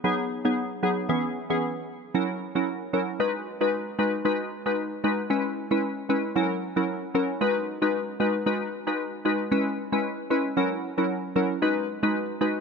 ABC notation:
X:1
M:4/4
L:1/16
Q:"Swing 16ths" 1/4=114
K:G#m
V:1 name="Synth pluck"
[F,B,DG]3 [F,B,DG] z2 [F,B,DG]2 [E,B,CG]2 z [E,B,CG] z4 | [F,CEA]2 z [F,CEA] z2 [F,CEA]2 [G,DFB]2 z [G,DFB] z2 [G,DFB]2 | [G,DFB]2 z [G,DFB] z2 [G,DFB]2 [G,CEB]2 z [G,CEB] z2 [G,CEB]2 | [F,CEA]2 z [F,CEA] z2 [F,CEA]2 [G,DFB]2 z [G,DFB] z2 [G,DFB]2 |
[G,DFB]2 z [G,DFB] z2 [G,DFB]2 [G,CEB]2 z [G,CEB]3 [G,CEB]2 | [F,CEA]2 z [F,CEA] z2 [F,CEA]2 [G,DFB]2 z [G,DFB] z2 [G,DFB]2 |]